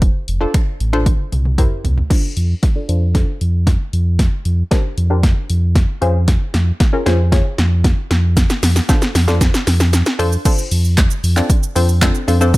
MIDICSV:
0, 0, Header, 1, 4, 480
1, 0, Start_track
1, 0, Tempo, 521739
1, 17, Time_signature, 4, 2, 24, 8
1, 11570, End_track
2, 0, Start_track
2, 0, Title_t, "Synth pluck"
2, 0, Program_c, 0, 84
2, 374, Note_on_c, 0, 62, 87
2, 376, Note_on_c, 0, 65, 80
2, 377, Note_on_c, 0, 69, 83
2, 378, Note_on_c, 0, 72, 95
2, 647, Note_off_c, 0, 62, 0
2, 648, Note_off_c, 0, 65, 0
2, 649, Note_off_c, 0, 69, 0
2, 649, Note_off_c, 0, 72, 0
2, 855, Note_on_c, 0, 62, 95
2, 857, Note_on_c, 0, 65, 85
2, 858, Note_on_c, 0, 69, 85
2, 859, Note_on_c, 0, 72, 103
2, 976, Note_off_c, 0, 62, 0
2, 977, Note_off_c, 0, 65, 0
2, 978, Note_off_c, 0, 69, 0
2, 978, Note_off_c, 0, 72, 0
2, 1454, Note_on_c, 0, 64, 88
2, 1454, Note_on_c, 0, 67, 80
2, 1457, Note_on_c, 0, 70, 75
2, 1458, Note_on_c, 0, 72, 90
2, 1727, Note_off_c, 0, 64, 0
2, 1727, Note_off_c, 0, 67, 0
2, 1729, Note_off_c, 0, 70, 0
2, 1729, Note_off_c, 0, 72, 0
2, 1934, Note_on_c, 0, 62, 98
2, 1936, Note_on_c, 0, 65, 86
2, 1938, Note_on_c, 0, 69, 86
2, 1939, Note_on_c, 0, 72, 105
2, 2275, Note_off_c, 0, 62, 0
2, 2276, Note_off_c, 0, 65, 0
2, 2277, Note_off_c, 0, 69, 0
2, 2277, Note_off_c, 0, 72, 0
2, 2535, Note_on_c, 0, 62, 79
2, 2537, Note_on_c, 0, 65, 72
2, 2538, Note_on_c, 0, 69, 75
2, 2540, Note_on_c, 0, 74, 85
2, 2604, Note_off_c, 0, 62, 0
2, 2605, Note_off_c, 0, 65, 0
2, 2606, Note_off_c, 0, 69, 0
2, 2607, Note_off_c, 0, 74, 0
2, 2654, Note_on_c, 0, 62, 90
2, 2657, Note_on_c, 0, 65, 80
2, 2657, Note_on_c, 0, 69, 84
2, 2659, Note_on_c, 0, 72, 99
2, 2792, Note_off_c, 0, 62, 0
2, 2793, Note_off_c, 0, 65, 0
2, 2793, Note_off_c, 0, 69, 0
2, 2794, Note_off_c, 0, 72, 0
2, 2895, Note_on_c, 0, 62, 77
2, 2897, Note_on_c, 0, 65, 76
2, 2899, Note_on_c, 0, 69, 72
2, 2900, Note_on_c, 0, 72, 87
2, 3439, Note_off_c, 0, 62, 0
2, 3440, Note_off_c, 0, 65, 0
2, 3441, Note_off_c, 0, 69, 0
2, 3442, Note_off_c, 0, 72, 0
2, 4332, Note_on_c, 0, 62, 82
2, 4335, Note_on_c, 0, 67, 76
2, 4336, Note_on_c, 0, 70, 76
2, 4338, Note_on_c, 0, 72, 88
2, 4538, Note_off_c, 0, 62, 0
2, 4540, Note_off_c, 0, 67, 0
2, 4540, Note_off_c, 0, 70, 0
2, 4541, Note_off_c, 0, 72, 0
2, 4693, Note_on_c, 0, 62, 91
2, 4693, Note_on_c, 0, 67, 77
2, 4696, Note_on_c, 0, 70, 79
2, 4697, Note_on_c, 0, 72, 94
2, 5170, Note_off_c, 0, 62, 0
2, 5171, Note_off_c, 0, 67, 0
2, 5172, Note_off_c, 0, 70, 0
2, 5172, Note_off_c, 0, 72, 0
2, 5534, Note_on_c, 0, 61, 91
2, 5536, Note_on_c, 0, 65, 86
2, 5537, Note_on_c, 0, 68, 85
2, 5538, Note_on_c, 0, 72, 105
2, 6208, Note_off_c, 0, 61, 0
2, 6209, Note_off_c, 0, 65, 0
2, 6209, Note_off_c, 0, 68, 0
2, 6210, Note_off_c, 0, 72, 0
2, 6374, Note_on_c, 0, 61, 82
2, 6377, Note_on_c, 0, 65, 76
2, 6378, Note_on_c, 0, 68, 72
2, 6380, Note_on_c, 0, 70, 93
2, 6444, Note_off_c, 0, 61, 0
2, 6445, Note_off_c, 0, 65, 0
2, 6446, Note_off_c, 0, 68, 0
2, 6447, Note_off_c, 0, 70, 0
2, 6494, Note_on_c, 0, 61, 90
2, 6495, Note_on_c, 0, 65, 88
2, 6497, Note_on_c, 0, 68, 82
2, 6499, Note_on_c, 0, 72, 99
2, 6632, Note_off_c, 0, 61, 0
2, 6632, Note_off_c, 0, 65, 0
2, 6633, Note_off_c, 0, 68, 0
2, 6634, Note_off_c, 0, 72, 0
2, 6734, Note_on_c, 0, 61, 82
2, 6736, Note_on_c, 0, 65, 74
2, 6737, Note_on_c, 0, 68, 76
2, 6739, Note_on_c, 0, 73, 90
2, 7279, Note_off_c, 0, 61, 0
2, 7280, Note_off_c, 0, 65, 0
2, 7280, Note_off_c, 0, 68, 0
2, 7281, Note_off_c, 0, 73, 0
2, 8177, Note_on_c, 0, 62, 87
2, 8178, Note_on_c, 0, 65, 78
2, 8180, Note_on_c, 0, 69, 78
2, 8181, Note_on_c, 0, 72, 95
2, 8381, Note_off_c, 0, 62, 0
2, 8382, Note_off_c, 0, 65, 0
2, 8382, Note_off_c, 0, 69, 0
2, 8383, Note_off_c, 0, 72, 0
2, 8535, Note_on_c, 0, 62, 91
2, 8536, Note_on_c, 0, 65, 85
2, 8537, Note_on_c, 0, 69, 79
2, 8540, Note_on_c, 0, 72, 98
2, 9011, Note_off_c, 0, 62, 0
2, 9012, Note_off_c, 0, 65, 0
2, 9013, Note_off_c, 0, 69, 0
2, 9014, Note_off_c, 0, 72, 0
2, 9374, Note_on_c, 0, 62, 102
2, 9376, Note_on_c, 0, 65, 95
2, 9377, Note_on_c, 0, 69, 94
2, 9379, Note_on_c, 0, 72, 116
2, 9512, Note_off_c, 0, 62, 0
2, 9512, Note_off_c, 0, 65, 0
2, 9513, Note_off_c, 0, 69, 0
2, 9514, Note_off_c, 0, 72, 0
2, 9616, Note_on_c, 0, 60, 85
2, 9617, Note_on_c, 0, 62, 80
2, 9618, Note_on_c, 0, 65, 81
2, 9620, Note_on_c, 0, 69, 82
2, 9621, Note_on_c, 0, 72, 98
2, 10092, Note_off_c, 0, 60, 0
2, 10093, Note_off_c, 0, 62, 0
2, 10093, Note_off_c, 0, 65, 0
2, 10094, Note_off_c, 0, 69, 0
2, 10094, Note_off_c, 0, 72, 0
2, 10455, Note_on_c, 0, 60, 84
2, 10456, Note_on_c, 0, 62, 77
2, 10458, Note_on_c, 0, 65, 80
2, 10459, Note_on_c, 0, 69, 77
2, 10460, Note_on_c, 0, 74, 94
2, 10660, Note_off_c, 0, 60, 0
2, 10661, Note_off_c, 0, 62, 0
2, 10662, Note_off_c, 0, 65, 0
2, 10662, Note_off_c, 0, 69, 0
2, 10662, Note_off_c, 0, 74, 0
2, 10815, Note_on_c, 0, 60, 86
2, 10817, Note_on_c, 0, 62, 80
2, 10817, Note_on_c, 0, 65, 77
2, 10819, Note_on_c, 0, 69, 79
2, 10820, Note_on_c, 0, 72, 96
2, 10952, Note_off_c, 0, 60, 0
2, 10953, Note_off_c, 0, 62, 0
2, 10953, Note_off_c, 0, 65, 0
2, 10954, Note_off_c, 0, 69, 0
2, 10955, Note_off_c, 0, 72, 0
2, 11055, Note_on_c, 0, 60, 106
2, 11056, Note_on_c, 0, 62, 92
2, 11057, Note_on_c, 0, 65, 95
2, 11058, Note_on_c, 0, 69, 95
2, 11060, Note_on_c, 0, 72, 109
2, 11192, Note_off_c, 0, 60, 0
2, 11193, Note_off_c, 0, 62, 0
2, 11193, Note_off_c, 0, 65, 0
2, 11194, Note_off_c, 0, 69, 0
2, 11195, Note_off_c, 0, 72, 0
2, 11295, Note_on_c, 0, 60, 90
2, 11296, Note_on_c, 0, 62, 83
2, 11298, Note_on_c, 0, 65, 80
2, 11299, Note_on_c, 0, 69, 80
2, 11300, Note_on_c, 0, 72, 99
2, 11364, Note_off_c, 0, 60, 0
2, 11365, Note_off_c, 0, 62, 0
2, 11365, Note_off_c, 0, 65, 0
2, 11366, Note_off_c, 0, 69, 0
2, 11367, Note_off_c, 0, 72, 0
2, 11415, Note_on_c, 0, 60, 96
2, 11416, Note_on_c, 0, 62, 93
2, 11417, Note_on_c, 0, 65, 90
2, 11418, Note_on_c, 0, 69, 90
2, 11419, Note_on_c, 0, 72, 105
2, 11536, Note_off_c, 0, 60, 0
2, 11537, Note_off_c, 0, 62, 0
2, 11537, Note_off_c, 0, 65, 0
2, 11538, Note_off_c, 0, 69, 0
2, 11538, Note_off_c, 0, 72, 0
2, 11570, End_track
3, 0, Start_track
3, 0, Title_t, "Sub bass"
3, 0, Program_c, 1, 38
3, 0, Note_on_c, 1, 29, 88
3, 108, Note_off_c, 1, 29, 0
3, 257, Note_on_c, 1, 29, 100
3, 423, Note_off_c, 1, 29, 0
3, 737, Note_on_c, 1, 33, 104
3, 1068, Note_off_c, 1, 33, 0
3, 1218, Note_on_c, 1, 36, 98
3, 1549, Note_off_c, 1, 36, 0
3, 1697, Note_on_c, 1, 36, 88
3, 1863, Note_off_c, 1, 36, 0
3, 2178, Note_on_c, 1, 41, 84
3, 2343, Note_off_c, 1, 41, 0
3, 2657, Note_on_c, 1, 41, 88
3, 2988, Note_off_c, 1, 41, 0
3, 3138, Note_on_c, 1, 41, 88
3, 3469, Note_off_c, 1, 41, 0
3, 3616, Note_on_c, 1, 41, 91
3, 3948, Note_off_c, 1, 41, 0
3, 4096, Note_on_c, 1, 41, 86
3, 4262, Note_off_c, 1, 41, 0
3, 4577, Note_on_c, 1, 41, 90
3, 4908, Note_off_c, 1, 41, 0
3, 5058, Note_on_c, 1, 41, 88
3, 5389, Note_off_c, 1, 41, 0
3, 5537, Note_on_c, 1, 41, 95
3, 5868, Note_off_c, 1, 41, 0
3, 6017, Note_on_c, 1, 41, 93
3, 6183, Note_off_c, 1, 41, 0
3, 6498, Note_on_c, 1, 41, 92
3, 6829, Note_off_c, 1, 41, 0
3, 6977, Note_on_c, 1, 41, 93
3, 7308, Note_off_c, 1, 41, 0
3, 7458, Note_on_c, 1, 41, 95
3, 7789, Note_off_c, 1, 41, 0
3, 7937, Note_on_c, 1, 41, 93
3, 8103, Note_off_c, 1, 41, 0
3, 8417, Note_on_c, 1, 41, 93
3, 8748, Note_off_c, 1, 41, 0
3, 8896, Note_on_c, 1, 41, 91
3, 9228, Note_off_c, 1, 41, 0
3, 9377, Note_on_c, 1, 41, 97
3, 9542, Note_off_c, 1, 41, 0
3, 9856, Note_on_c, 1, 41, 101
3, 10188, Note_off_c, 1, 41, 0
3, 10336, Note_on_c, 1, 41, 103
3, 10502, Note_off_c, 1, 41, 0
3, 10817, Note_on_c, 1, 41, 89
3, 11148, Note_off_c, 1, 41, 0
3, 11296, Note_on_c, 1, 41, 99
3, 11570, Note_off_c, 1, 41, 0
3, 11570, End_track
4, 0, Start_track
4, 0, Title_t, "Drums"
4, 17, Note_on_c, 9, 36, 112
4, 17, Note_on_c, 9, 42, 69
4, 109, Note_off_c, 9, 36, 0
4, 109, Note_off_c, 9, 42, 0
4, 258, Note_on_c, 9, 42, 54
4, 350, Note_off_c, 9, 42, 0
4, 499, Note_on_c, 9, 42, 65
4, 500, Note_on_c, 9, 26, 94
4, 500, Note_on_c, 9, 36, 114
4, 591, Note_off_c, 9, 42, 0
4, 592, Note_off_c, 9, 26, 0
4, 592, Note_off_c, 9, 36, 0
4, 740, Note_on_c, 9, 42, 56
4, 832, Note_off_c, 9, 42, 0
4, 859, Note_on_c, 9, 26, 66
4, 951, Note_off_c, 9, 26, 0
4, 977, Note_on_c, 9, 36, 113
4, 978, Note_on_c, 9, 42, 74
4, 978, Note_on_c, 9, 48, 55
4, 1069, Note_off_c, 9, 36, 0
4, 1070, Note_off_c, 9, 42, 0
4, 1070, Note_off_c, 9, 48, 0
4, 1218, Note_on_c, 9, 47, 68
4, 1219, Note_on_c, 9, 42, 56
4, 1310, Note_off_c, 9, 47, 0
4, 1311, Note_off_c, 9, 42, 0
4, 1338, Note_on_c, 9, 47, 64
4, 1430, Note_off_c, 9, 47, 0
4, 1456, Note_on_c, 9, 36, 98
4, 1457, Note_on_c, 9, 42, 65
4, 1457, Note_on_c, 9, 45, 81
4, 1548, Note_off_c, 9, 36, 0
4, 1549, Note_off_c, 9, 42, 0
4, 1549, Note_off_c, 9, 45, 0
4, 1698, Note_on_c, 9, 43, 87
4, 1699, Note_on_c, 9, 42, 49
4, 1790, Note_off_c, 9, 43, 0
4, 1791, Note_off_c, 9, 42, 0
4, 1818, Note_on_c, 9, 43, 84
4, 1910, Note_off_c, 9, 43, 0
4, 1937, Note_on_c, 9, 36, 120
4, 1938, Note_on_c, 9, 38, 53
4, 1938, Note_on_c, 9, 42, 69
4, 1938, Note_on_c, 9, 49, 89
4, 2029, Note_off_c, 9, 36, 0
4, 2030, Note_off_c, 9, 38, 0
4, 2030, Note_off_c, 9, 42, 0
4, 2030, Note_off_c, 9, 49, 0
4, 2178, Note_on_c, 9, 42, 56
4, 2270, Note_off_c, 9, 42, 0
4, 2417, Note_on_c, 9, 38, 55
4, 2418, Note_on_c, 9, 42, 64
4, 2420, Note_on_c, 9, 36, 110
4, 2509, Note_off_c, 9, 38, 0
4, 2510, Note_off_c, 9, 42, 0
4, 2512, Note_off_c, 9, 36, 0
4, 2658, Note_on_c, 9, 42, 54
4, 2750, Note_off_c, 9, 42, 0
4, 2896, Note_on_c, 9, 36, 107
4, 2897, Note_on_c, 9, 38, 62
4, 2897, Note_on_c, 9, 42, 70
4, 2988, Note_off_c, 9, 36, 0
4, 2989, Note_off_c, 9, 38, 0
4, 2989, Note_off_c, 9, 42, 0
4, 3138, Note_on_c, 9, 42, 56
4, 3230, Note_off_c, 9, 42, 0
4, 3375, Note_on_c, 9, 36, 100
4, 3377, Note_on_c, 9, 38, 62
4, 3377, Note_on_c, 9, 42, 64
4, 3467, Note_off_c, 9, 36, 0
4, 3469, Note_off_c, 9, 38, 0
4, 3469, Note_off_c, 9, 42, 0
4, 3618, Note_on_c, 9, 42, 50
4, 3710, Note_off_c, 9, 42, 0
4, 3856, Note_on_c, 9, 36, 115
4, 3857, Note_on_c, 9, 38, 69
4, 3857, Note_on_c, 9, 42, 72
4, 3948, Note_off_c, 9, 36, 0
4, 3949, Note_off_c, 9, 38, 0
4, 3949, Note_off_c, 9, 42, 0
4, 4097, Note_on_c, 9, 42, 58
4, 4189, Note_off_c, 9, 42, 0
4, 4336, Note_on_c, 9, 38, 70
4, 4337, Note_on_c, 9, 42, 63
4, 4339, Note_on_c, 9, 36, 109
4, 4428, Note_off_c, 9, 38, 0
4, 4429, Note_off_c, 9, 42, 0
4, 4431, Note_off_c, 9, 36, 0
4, 4578, Note_on_c, 9, 42, 57
4, 4670, Note_off_c, 9, 42, 0
4, 4815, Note_on_c, 9, 36, 108
4, 4815, Note_on_c, 9, 38, 75
4, 4816, Note_on_c, 9, 42, 73
4, 4907, Note_off_c, 9, 36, 0
4, 4907, Note_off_c, 9, 38, 0
4, 4908, Note_off_c, 9, 42, 0
4, 5056, Note_on_c, 9, 42, 55
4, 5148, Note_off_c, 9, 42, 0
4, 5295, Note_on_c, 9, 36, 103
4, 5295, Note_on_c, 9, 38, 77
4, 5295, Note_on_c, 9, 42, 67
4, 5387, Note_off_c, 9, 36, 0
4, 5387, Note_off_c, 9, 38, 0
4, 5387, Note_off_c, 9, 42, 0
4, 5537, Note_on_c, 9, 42, 51
4, 5629, Note_off_c, 9, 42, 0
4, 5776, Note_on_c, 9, 36, 117
4, 5776, Note_on_c, 9, 38, 83
4, 5776, Note_on_c, 9, 42, 74
4, 5868, Note_off_c, 9, 36, 0
4, 5868, Note_off_c, 9, 38, 0
4, 5868, Note_off_c, 9, 42, 0
4, 6016, Note_on_c, 9, 38, 90
4, 6016, Note_on_c, 9, 42, 57
4, 6108, Note_off_c, 9, 38, 0
4, 6108, Note_off_c, 9, 42, 0
4, 6257, Note_on_c, 9, 38, 83
4, 6258, Note_on_c, 9, 42, 65
4, 6260, Note_on_c, 9, 36, 115
4, 6349, Note_off_c, 9, 38, 0
4, 6350, Note_off_c, 9, 42, 0
4, 6352, Note_off_c, 9, 36, 0
4, 6498, Note_on_c, 9, 38, 87
4, 6500, Note_on_c, 9, 42, 59
4, 6590, Note_off_c, 9, 38, 0
4, 6592, Note_off_c, 9, 42, 0
4, 6737, Note_on_c, 9, 36, 113
4, 6738, Note_on_c, 9, 38, 90
4, 6738, Note_on_c, 9, 42, 77
4, 6829, Note_off_c, 9, 36, 0
4, 6830, Note_off_c, 9, 38, 0
4, 6830, Note_off_c, 9, 42, 0
4, 6977, Note_on_c, 9, 38, 91
4, 6978, Note_on_c, 9, 42, 57
4, 7069, Note_off_c, 9, 38, 0
4, 7070, Note_off_c, 9, 42, 0
4, 7216, Note_on_c, 9, 36, 102
4, 7217, Note_on_c, 9, 38, 96
4, 7217, Note_on_c, 9, 42, 69
4, 7308, Note_off_c, 9, 36, 0
4, 7309, Note_off_c, 9, 38, 0
4, 7309, Note_off_c, 9, 42, 0
4, 7458, Note_on_c, 9, 38, 97
4, 7460, Note_on_c, 9, 42, 53
4, 7550, Note_off_c, 9, 38, 0
4, 7552, Note_off_c, 9, 42, 0
4, 7698, Note_on_c, 9, 36, 121
4, 7698, Note_on_c, 9, 42, 75
4, 7698, Note_on_c, 9, 82, 75
4, 7699, Note_on_c, 9, 38, 97
4, 7790, Note_off_c, 9, 36, 0
4, 7790, Note_off_c, 9, 42, 0
4, 7790, Note_off_c, 9, 82, 0
4, 7791, Note_off_c, 9, 38, 0
4, 7819, Note_on_c, 9, 38, 98
4, 7819, Note_on_c, 9, 82, 64
4, 7911, Note_off_c, 9, 38, 0
4, 7911, Note_off_c, 9, 82, 0
4, 7939, Note_on_c, 9, 38, 108
4, 7939, Note_on_c, 9, 46, 86
4, 7939, Note_on_c, 9, 82, 60
4, 8031, Note_off_c, 9, 38, 0
4, 8031, Note_off_c, 9, 46, 0
4, 8031, Note_off_c, 9, 82, 0
4, 8059, Note_on_c, 9, 38, 99
4, 8059, Note_on_c, 9, 82, 69
4, 8151, Note_off_c, 9, 38, 0
4, 8151, Note_off_c, 9, 82, 0
4, 8178, Note_on_c, 9, 38, 103
4, 8179, Note_on_c, 9, 42, 65
4, 8179, Note_on_c, 9, 82, 71
4, 8181, Note_on_c, 9, 36, 119
4, 8270, Note_off_c, 9, 38, 0
4, 8271, Note_off_c, 9, 42, 0
4, 8271, Note_off_c, 9, 82, 0
4, 8273, Note_off_c, 9, 36, 0
4, 8297, Note_on_c, 9, 82, 58
4, 8298, Note_on_c, 9, 38, 103
4, 8389, Note_off_c, 9, 82, 0
4, 8390, Note_off_c, 9, 38, 0
4, 8418, Note_on_c, 9, 38, 104
4, 8420, Note_on_c, 9, 46, 82
4, 8420, Note_on_c, 9, 82, 61
4, 8510, Note_off_c, 9, 38, 0
4, 8512, Note_off_c, 9, 46, 0
4, 8512, Note_off_c, 9, 82, 0
4, 8538, Note_on_c, 9, 38, 102
4, 8538, Note_on_c, 9, 82, 72
4, 8630, Note_off_c, 9, 38, 0
4, 8630, Note_off_c, 9, 82, 0
4, 8657, Note_on_c, 9, 36, 117
4, 8658, Note_on_c, 9, 38, 115
4, 8658, Note_on_c, 9, 42, 81
4, 8658, Note_on_c, 9, 82, 76
4, 8749, Note_off_c, 9, 36, 0
4, 8750, Note_off_c, 9, 38, 0
4, 8750, Note_off_c, 9, 42, 0
4, 8750, Note_off_c, 9, 82, 0
4, 8778, Note_on_c, 9, 38, 107
4, 8781, Note_on_c, 9, 82, 64
4, 8870, Note_off_c, 9, 38, 0
4, 8873, Note_off_c, 9, 82, 0
4, 8897, Note_on_c, 9, 38, 114
4, 8898, Note_on_c, 9, 46, 80
4, 8898, Note_on_c, 9, 82, 57
4, 8989, Note_off_c, 9, 38, 0
4, 8990, Note_off_c, 9, 46, 0
4, 8990, Note_off_c, 9, 82, 0
4, 9016, Note_on_c, 9, 82, 62
4, 9017, Note_on_c, 9, 38, 111
4, 9108, Note_off_c, 9, 82, 0
4, 9109, Note_off_c, 9, 38, 0
4, 9137, Note_on_c, 9, 38, 117
4, 9137, Note_on_c, 9, 42, 67
4, 9137, Note_on_c, 9, 82, 69
4, 9229, Note_off_c, 9, 38, 0
4, 9229, Note_off_c, 9, 42, 0
4, 9229, Note_off_c, 9, 82, 0
4, 9256, Note_on_c, 9, 82, 45
4, 9258, Note_on_c, 9, 38, 115
4, 9348, Note_off_c, 9, 82, 0
4, 9350, Note_off_c, 9, 38, 0
4, 9379, Note_on_c, 9, 46, 73
4, 9379, Note_on_c, 9, 82, 56
4, 9471, Note_off_c, 9, 46, 0
4, 9471, Note_off_c, 9, 82, 0
4, 9498, Note_on_c, 9, 82, 67
4, 9590, Note_off_c, 9, 82, 0
4, 9618, Note_on_c, 9, 36, 127
4, 9618, Note_on_c, 9, 42, 78
4, 9618, Note_on_c, 9, 49, 101
4, 9618, Note_on_c, 9, 82, 80
4, 9710, Note_off_c, 9, 36, 0
4, 9710, Note_off_c, 9, 42, 0
4, 9710, Note_off_c, 9, 49, 0
4, 9710, Note_off_c, 9, 82, 0
4, 9737, Note_on_c, 9, 82, 68
4, 9829, Note_off_c, 9, 82, 0
4, 9858, Note_on_c, 9, 46, 86
4, 9858, Note_on_c, 9, 82, 62
4, 9950, Note_off_c, 9, 46, 0
4, 9950, Note_off_c, 9, 82, 0
4, 9978, Note_on_c, 9, 82, 68
4, 10070, Note_off_c, 9, 82, 0
4, 10097, Note_on_c, 9, 42, 66
4, 10097, Note_on_c, 9, 82, 68
4, 10099, Note_on_c, 9, 39, 102
4, 10100, Note_on_c, 9, 36, 124
4, 10100, Note_on_c, 9, 38, 78
4, 10189, Note_off_c, 9, 42, 0
4, 10189, Note_off_c, 9, 82, 0
4, 10191, Note_off_c, 9, 39, 0
4, 10192, Note_off_c, 9, 36, 0
4, 10192, Note_off_c, 9, 38, 0
4, 10217, Note_on_c, 9, 82, 60
4, 10309, Note_off_c, 9, 82, 0
4, 10340, Note_on_c, 9, 46, 83
4, 10340, Note_on_c, 9, 82, 59
4, 10432, Note_off_c, 9, 46, 0
4, 10432, Note_off_c, 9, 82, 0
4, 10457, Note_on_c, 9, 82, 75
4, 10458, Note_on_c, 9, 39, 73
4, 10549, Note_off_c, 9, 82, 0
4, 10550, Note_off_c, 9, 39, 0
4, 10577, Note_on_c, 9, 36, 121
4, 10578, Note_on_c, 9, 42, 79
4, 10578, Note_on_c, 9, 82, 79
4, 10669, Note_off_c, 9, 36, 0
4, 10670, Note_off_c, 9, 42, 0
4, 10670, Note_off_c, 9, 82, 0
4, 10700, Note_on_c, 9, 82, 64
4, 10792, Note_off_c, 9, 82, 0
4, 10819, Note_on_c, 9, 46, 80
4, 10819, Note_on_c, 9, 82, 57
4, 10911, Note_off_c, 9, 46, 0
4, 10911, Note_off_c, 9, 82, 0
4, 10937, Note_on_c, 9, 82, 64
4, 11029, Note_off_c, 9, 82, 0
4, 11056, Note_on_c, 9, 36, 107
4, 11057, Note_on_c, 9, 42, 72
4, 11057, Note_on_c, 9, 82, 67
4, 11058, Note_on_c, 9, 39, 115
4, 11060, Note_on_c, 9, 38, 92
4, 11148, Note_off_c, 9, 36, 0
4, 11149, Note_off_c, 9, 42, 0
4, 11149, Note_off_c, 9, 82, 0
4, 11150, Note_off_c, 9, 39, 0
4, 11152, Note_off_c, 9, 38, 0
4, 11176, Note_on_c, 9, 82, 45
4, 11268, Note_off_c, 9, 82, 0
4, 11299, Note_on_c, 9, 46, 73
4, 11299, Note_on_c, 9, 82, 54
4, 11391, Note_off_c, 9, 46, 0
4, 11391, Note_off_c, 9, 82, 0
4, 11418, Note_on_c, 9, 82, 71
4, 11510, Note_off_c, 9, 82, 0
4, 11538, Note_on_c, 9, 36, 126
4, 11538, Note_on_c, 9, 42, 76
4, 11538, Note_on_c, 9, 82, 76
4, 11570, Note_off_c, 9, 36, 0
4, 11570, Note_off_c, 9, 42, 0
4, 11570, Note_off_c, 9, 82, 0
4, 11570, End_track
0, 0, End_of_file